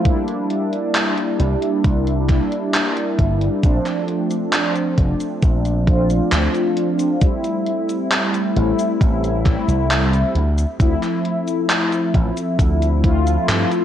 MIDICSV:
0, 0, Header, 1, 4, 480
1, 0, Start_track
1, 0, Key_signature, -1, "minor"
1, 0, Tempo, 895522
1, 29, Time_signature, 4, 2, 24, 8
1, 7421, End_track
2, 0, Start_track
2, 0, Title_t, "Analog polysynth"
2, 0, Program_c, 0, 90
2, 0, Control_c, 0, 64, 127
2, 17, Note_on_c, 0, 55, 90
2, 23, Note_on_c, 0, 58, 78
2, 28, Note_on_c, 0, 62, 77
2, 33, Note_on_c, 0, 64, 91
2, 36, Control_c, 0, 64, 0
2, 130, Control_c, 0, 64, 127
2, 1195, Note_off_c, 0, 55, 0
2, 1197, Note_off_c, 0, 58, 0
2, 1200, Note_off_c, 0, 62, 0
2, 1203, Note_off_c, 0, 64, 0
2, 1219, Note_on_c, 0, 55, 84
2, 1224, Note_on_c, 0, 58, 78
2, 1230, Note_on_c, 0, 62, 77
2, 1235, Note_on_c, 0, 64, 97
2, 1916, Note_off_c, 0, 55, 0
2, 1918, Note_off_c, 0, 58, 0
2, 1921, Note_off_c, 0, 62, 0
2, 1924, Note_off_c, 0, 64, 0
2, 1939, Note_on_c, 0, 53, 80
2, 1945, Note_on_c, 0, 57, 77
2, 1950, Note_on_c, 0, 60, 71
2, 1956, Note_on_c, 0, 62, 91
2, 1957, Control_c, 0, 64, 0
2, 2052, Control_c, 0, 64, 127
2, 3116, Note_off_c, 0, 53, 0
2, 3118, Note_off_c, 0, 57, 0
2, 3121, Note_off_c, 0, 60, 0
2, 3124, Note_off_c, 0, 62, 0
2, 3141, Note_on_c, 0, 53, 89
2, 3147, Note_on_c, 0, 57, 84
2, 3152, Note_on_c, 0, 60, 86
2, 3157, Note_on_c, 0, 65, 105
2, 3836, Note_off_c, 0, 53, 0
2, 3839, Note_off_c, 0, 57, 0
2, 3842, Note_off_c, 0, 60, 0
2, 3844, Note_off_c, 0, 65, 0
2, 3863, Note_on_c, 0, 55, 87
2, 3868, Note_on_c, 0, 57, 79
2, 3873, Note_on_c, 0, 60, 79
2, 3876, Control_c, 0, 64, 0
2, 3878, Note_on_c, 0, 64, 96
2, 3967, Control_c, 0, 64, 127
2, 5037, Note_off_c, 0, 55, 0
2, 5040, Note_off_c, 0, 57, 0
2, 5042, Note_off_c, 0, 60, 0
2, 5045, Note_off_c, 0, 64, 0
2, 5065, Note_on_c, 0, 55, 84
2, 5067, Note_on_c, 0, 57, 79
2, 5069, Note_on_c, 0, 60, 76
2, 5073, Note_on_c, 0, 64, 95
2, 5533, Note_off_c, 0, 55, 0
2, 5534, Note_off_c, 0, 57, 0
2, 5535, Note_off_c, 0, 60, 0
2, 5537, Note_off_c, 0, 64, 0
2, 5555, Control_c, 0, 64, 0
2, 5636, Control_c, 0, 64, 127
2, 5779, Note_on_c, 0, 53, 81
2, 5784, Note_on_c, 0, 57, 74
2, 5789, Note_on_c, 0, 60, 76
2, 5794, Note_on_c, 0, 64, 95
2, 6955, Note_off_c, 0, 53, 0
2, 6958, Note_off_c, 0, 57, 0
2, 6961, Note_off_c, 0, 60, 0
2, 6963, Note_off_c, 0, 64, 0
2, 6980, Note_on_c, 0, 53, 94
2, 6986, Note_on_c, 0, 57, 84
2, 6991, Note_on_c, 0, 60, 84
2, 6997, Note_on_c, 0, 65, 104
2, 7421, Note_off_c, 0, 53, 0
2, 7421, Note_off_c, 0, 57, 0
2, 7421, Note_off_c, 0, 60, 0
2, 7421, Note_off_c, 0, 65, 0
2, 7421, End_track
3, 0, Start_track
3, 0, Title_t, "Slap bass"
3, 0, Program_c, 1, 36
3, 747, Note_on_c, 1, 36, 84
3, 826, Note_off_c, 1, 36, 0
3, 988, Note_on_c, 1, 36, 85
3, 1280, Note_off_c, 1, 36, 0
3, 1708, Note_on_c, 1, 31, 86
3, 1863, Note_off_c, 1, 31, 0
3, 1948, Note_on_c, 1, 34, 92
3, 2026, Note_off_c, 1, 34, 0
3, 2668, Note_on_c, 1, 29, 86
3, 2746, Note_off_c, 1, 29, 0
3, 2908, Note_on_c, 1, 34, 71
3, 3320, Note_off_c, 1, 34, 0
3, 3388, Note_on_c, 1, 38, 85
3, 3466, Note_off_c, 1, 38, 0
3, 4589, Note_on_c, 1, 33, 85
3, 4666, Note_off_c, 1, 33, 0
3, 4828, Note_on_c, 1, 33, 85
3, 5120, Note_off_c, 1, 33, 0
3, 5188, Note_on_c, 1, 36, 74
3, 5480, Note_off_c, 1, 36, 0
3, 5547, Note_on_c, 1, 38, 75
3, 5703, Note_off_c, 1, 38, 0
3, 5788, Note_on_c, 1, 38, 92
3, 5866, Note_off_c, 1, 38, 0
3, 6508, Note_on_c, 1, 33, 91
3, 6586, Note_off_c, 1, 33, 0
3, 6748, Note_on_c, 1, 38, 75
3, 7160, Note_off_c, 1, 38, 0
3, 7228, Note_on_c, 1, 43, 93
3, 7306, Note_off_c, 1, 43, 0
3, 7421, End_track
4, 0, Start_track
4, 0, Title_t, "Drums"
4, 28, Note_on_c, 9, 36, 117
4, 28, Note_on_c, 9, 42, 81
4, 81, Note_off_c, 9, 36, 0
4, 82, Note_off_c, 9, 42, 0
4, 149, Note_on_c, 9, 42, 34
4, 203, Note_off_c, 9, 42, 0
4, 268, Note_on_c, 9, 42, 34
4, 322, Note_off_c, 9, 42, 0
4, 389, Note_on_c, 9, 42, 33
4, 443, Note_off_c, 9, 42, 0
4, 508, Note_on_c, 9, 39, 111
4, 508, Note_on_c, 9, 42, 86
4, 561, Note_off_c, 9, 39, 0
4, 561, Note_off_c, 9, 42, 0
4, 629, Note_on_c, 9, 42, 36
4, 683, Note_off_c, 9, 42, 0
4, 748, Note_on_c, 9, 42, 59
4, 802, Note_off_c, 9, 42, 0
4, 869, Note_on_c, 9, 42, 36
4, 922, Note_off_c, 9, 42, 0
4, 988, Note_on_c, 9, 36, 114
4, 988, Note_on_c, 9, 42, 88
4, 1042, Note_off_c, 9, 36, 0
4, 1042, Note_off_c, 9, 42, 0
4, 1110, Note_on_c, 9, 42, 35
4, 1163, Note_off_c, 9, 42, 0
4, 1228, Note_on_c, 9, 36, 90
4, 1229, Note_on_c, 9, 39, 38
4, 1229, Note_on_c, 9, 42, 62
4, 1281, Note_off_c, 9, 36, 0
4, 1282, Note_off_c, 9, 39, 0
4, 1282, Note_off_c, 9, 42, 0
4, 1350, Note_on_c, 9, 42, 36
4, 1404, Note_off_c, 9, 42, 0
4, 1469, Note_on_c, 9, 39, 111
4, 1469, Note_on_c, 9, 42, 84
4, 1523, Note_off_c, 9, 39, 0
4, 1523, Note_off_c, 9, 42, 0
4, 1590, Note_on_c, 9, 42, 36
4, 1644, Note_off_c, 9, 42, 0
4, 1708, Note_on_c, 9, 36, 57
4, 1709, Note_on_c, 9, 42, 57
4, 1761, Note_off_c, 9, 36, 0
4, 1762, Note_off_c, 9, 42, 0
4, 1829, Note_on_c, 9, 42, 38
4, 1883, Note_off_c, 9, 42, 0
4, 1948, Note_on_c, 9, 36, 109
4, 1948, Note_on_c, 9, 42, 79
4, 1948, Note_on_c, 9, 69, 41
4, 2001, Note_off_c, 9, 36, 0
4, 2002, Note_off_c, 9, 42, 0
4, 2002, Note_off_c, 9, 69, 0
4, 2069, Note_on_c, 9, 39, 34
4, 2069, Note_on_c, 9, 42, 32
4, 2069, Note_on_c, 9, 69, 23
4, 2123, Note_off_c, 9, 39, 0
4, 2123, Note_off_c, 9, 42, 0
4, 2123, Note_off_c, 9, 69, 0
4, 2188, Note_on_c, 9, 42, 33
4, 2241, Note_off_c, 9, 42, 0
4, 2308, Note_on_c, 9, 42, 35
4, 2308, Note_on_c, 9, 69, 47
4, 2362, Note_off_c, 9, 42, 0
4, 2362, Note_off_c, 9, 69, 0
4, 2427, Note_on_c, 9, 39, 113
4, 2427, Note_on_c, 9, 42, 86
4, 2427, Note_on_c, 9, 69, 41
4, 2481, Note_off_c, 9, 39, 0
4, 2481, Note_off_c, 9, 42, 0
4, 2481, Note_off_c, 9, 69, 0
4, 2549, Note_on_c, 9, 42, 35
4, 2549, Note_on_c, 9, 69, 25
4, 2603, Note_off_c, 9, 42, 0
4, 2603, Note_off_c, 9, 69, 0
4, 2668, Note_on_c, 9, 36, 59
4, 2668, Note_on_c, 9, 42, 60
4, 2722, Note_off_c, 9, 36, 0
4, 2722, Note_off_c, 9, 42, 0
4, 2789, Note_on_c, 9, 42, 37
4, 2789, Note_on_c, 9, 69, 53
4, 2842, Note_off_c, 9, 42, 0
4, 2842, Note_off_c, 9, 69, 0
4, 2908, Note_on_c, 9, 36, 115
4, 2908, Note_on_c, 9, 42, 85
4, 2908, Note_on_c, 9, 69, 41
4, 2962, Note_off_c, 9, 36, 0
4, 2962, Note_off_c, 9, 42, 0
4, 2962, Note_off_c, 9, 69, 0
4, 3029, Note_on_c, 9, 42, 36
4, 3029, Note_on_c, 9, 69, 26
4, 3083, Note_off_c, 9, 42, 0
4, 3083, Note_off_c, 9, 69, 0
4, 3148, Note_on_c, 9, 36, 97
4, 3148, Note_on_c, 9, 42, 60
4, 3202, Note_off_c, 9, 36, 0
4, 3202, Note_off_c, 9, 42, 0
4, 3270, Note_on_c, 9, 42, 37
4, 3270, Note_on_c, 9, 69, 49
4, 3323, Note_off_c, 9, 42, 0
4, 3323, Note_off_c, 9, 69, 0
4, 3388, Note_on_c, 9, 39, 108
4, 3388, Note_on_c, 9, 42, 86
4, 3388, Note_on_c, 9, 69, 43
4, 3442, Note_off_c, 9, 39, 0
4, 3442, Note_off_c, 9, 42, 0
4, 3442, Note_off_c, 9, 69, 0
4, 3509, Note_on_c, 9, 42, 33
4, 3509, Note_on_c, 9, 69, 25
4, 3562, Note_off_c, 9, 42, 0
4, 3562, Note_off_c, 9, 69, 0
4, 3628, Note_on_c, 9, 42, 57
4, 3682, Note_off_c, 9, 42, 0
4, 3749, Note_on_c, 9, 42, 37
4, 3749, Note_on_c, 9, 69, 50
4, 3802, Note_off_c, 9, 42, 0
4, 3802, Note_off_c, 9, 69, 0
4, 3868, Note_on_c, 9, 36, 107
4, 3868, Note_on_c, 9, 42, 84
4, 3868, Note_on_c, 9, 69, 44
4, 3921, Note_off_c, 9, 42, 0
4, 3921, Note_off_c, 9, 69, 0
4, 3922, Note_off_c, 9, 36, 0
4, 3989, Note_on_c, 9, 42, 36
4, 3989, Note_on_c, 9, 69, 25
4, 4043, Note_off_c, 9, 42, 0
4, 4043, Note_off_c, 9, 69, 0
4, 4108, Note_on_c, 9, 42, 34
4, 4162, Note_off_c, 9, 42, 0
4, 4230, Note_on_c, 9, 42, 34
4, 4230, Note_on_c, 9, 69, 52
4, 4284, Note_off_c, 9, 42, 0
4, 4284, Note_off_c, 9, 69, 0
4, 4349, Note_on_c, 9, 39, 107
4, 4349, Note_on_c, 9, 42, 85
4, 4349, Note_on_c, 9, 69, 44
4, 4403, Note_off_c, 9, 39, 0
4, 4403, Note_off_c, 9, 42, 0
4, 4403, Note_off_c, 9, 69, 0
4, 4471, Note_on_c, 9, 42, 36
4, 4471, Note_on_c, 9, 69, 26
4, 4524, Note_off_c, 9, 42, 0
4, 4524, Note_off_c, 9, 69, 0
4, 4590, Note_on_c, 9, 42, 59
4, 4644, Note_off_c, 9, 42, 0
4, 4711, Note_on_c, 9, 42, 37
4, 4711, Note_on_c, 9, 69, 53
4, 4764, Note_off_c, 9, 42, 0
4, 4764, Note_off_c, 9, 69, 0
4, 4828, Note_on_c, 9, 36, 110
4, 4830, Note_on_c, 9, 42, 83
4, 4830, Note_on_c, 9, 69, 45
4, 4882, Note_off_c, 9, 36, 0
4, 4884, Note_off_c, 9, 42, 0
4, 4884, Note_off_c, 9, 69, 0
4, 4952, Note_on_c, 9, 42, 36
4, 4952, Note_on_c, 9, 69, 27
4, 5006, Note_off_c, 9, 42, 0
4, 5006, Note_off_c, 9, 69, 0
4, 5068, Note_on_c, 9, 36, 89
4, 5070, Note_on_c, 9, 39, 33
4, 5070, Note_on_c, 9, 42, 64
4, 5122, Note_off_c, 9, 36, 0
4, 5123, Note_off_c, 9, 39, 0
4, 5123, Note_off_c, 9, 42, 0
4, 5192, Note_on_c, 9, 42, 37
4, 5192, Note_on_c, 9, 69, 54
4, 5246, Note_off_c, 9, 42, 0
4, 5246, Note_off_c, 9, 69, 0
4, 5311, Note_on_c, 9, 39, 104
4, 5311, Note_on_c, 9, 42, 84
4, 5311, Note_on_c, 9, 69, 42
4, 5364, Note_off_c, 9, 39, 0
4, 5364, Note_off_c, 9, 42, 0
4, 5364, Note_off_c, 9, 69, 0
4, 5431, Note_on_c, 9, 42, 33
4, 5431, Note_on_c, 9, 69, 25
4, 5485, Note_off_c, 9, 42, 0
4, 5485, Note_off_c, 9, 69, 0
4, 5550, Note_on_c, 9, 42, 56
4, 5604, Note_off_c, 9, 42, 0
4, 5671, Note_on_c, 9, 42, 36
4, 5671, Note_on_c, 9, 69, 52
4, 5725, Note_off_c, 9, 42, 0
4, 5725, Note_off_c, 9, 69, 0
4, 5788, Note_on_c, 9, 36, 112
4, 5790, Note_on_c, 9, 42, 83
4, 5790, Note_on_c, 9, 69, 45
4, 5842, Note_off_c, 9, 36, 0
4, 5844, Note_off_c, 9, 42, 0
4, 5844, Note_off_c, 9, 69, 0
4, 5912, Note_on_c, 9, 39, 32
4, 5912, Note_on_c, 9, 42, 36
4, 5912, Note_on_c, 9, 69, 27
4, 5965, Note_off_c, 9, 39, 0
4, 5965, Note_off_c, 9, 42, 0
4, 5965, Note_off_c, 9, 69, 0
4, 6030, Note_on_c, 9, 42, 36
4, 6084, Note_off_c, 9, 42, 0
4, 6151, Note_on_c, 9, 42, 35
4, 6151, Note_on_c, 9, 69, 52
4, 6205, Note_off_c, 9, 42, 0
4, 6205, Note_off_c, 9, 69, 0
4, 6270, Note_on_c, 9, 39, 110
4, 6270, Note_on_c, 9, 42, 90
4, 6270, Note_on_c, 9, 69, 47
4, 6323, Note_off_c, 9, 39, 0
4, 6323, Note_off_c, 9, 42, 0
4, 6323, Note_off_c, 9, 69, 0
4, 6391, Note_on_c, 9, 42, 36
4, 6391, Note_on_c, 9, 69, 27
4, 6444, Note_off_c, 9, 42, 0
4, 6444, Note_off_c, 9, 69, 0
4, 6508, Note_on_c, 9, 36, 55
4, 6510, Note_on_c, 9, 42, 59
4, 6562, Note_off_c, 9, 36, 0
4, 6564, Note_off_c, 9, 42, 0
4, 6631, Note_on_c, 9, 42, 37
4, 6631, Note_on_c, 9, 69, 55
4, 6685, Note_off_c, 9, 42, 0
4, 6685, Note_off_c, 9, 69, 0
4, 6748, Note_on_c, 9, 36, 103
4, 6751, Note_on_c, 9, 42, 87
4, 6751, Note_on_c, 9, 69, 45
4, 6802, Note_off_c, 9, 36, 0
4, 6804, Note_off_c, 9, 42, 0
4, 6804, Note_off_c, 9, 69, 0
4, 6872, Note_on_c, 9, 42, 36
4, 6872, Note_on_c, 9, 69, 26
4, 6926, Note_off_c, 9, 42, 0
4, 6926, Note_off_c, 9, 69, 0
4, 6988, Note_on_c, 9, 36, 91
4, 6991, Note_on_c, 9, 42, 64
4, 7042, Note_off_c, 9, 36, 0
4, 7044, Note_off_c, 9, 42, 0
4, 7112, Note_on_c, 9, 42, 35
4, 7112, Note_on_c, 9, 69, 54
4, 7165, Note_off_c, 9, 42, 0
4, 7165, Note_off_c, 9, 69, 0
4, 7231, Note_on_c, 9, 39, 111
4, 7231, Note_on_c, 9, 42, 88
4, 7231, Note_on_c, 9, 69, 44
4, 7284, Note_off_c, 9, 39, 0
4, 7284, Note_off_c, 9, 42, 0
4, 7284, Note_off_c, 9, 69, 0
4, 7351, Note_on_c, 9, 42, 36
4, 7351, Note_on_c, 9, 69, 26
4, 7405, Note_off_c, 9, 42, 0
4, 7405, Note_off_c, 9, 69, 0
4, 7421, End_track
0, 0, End_of_file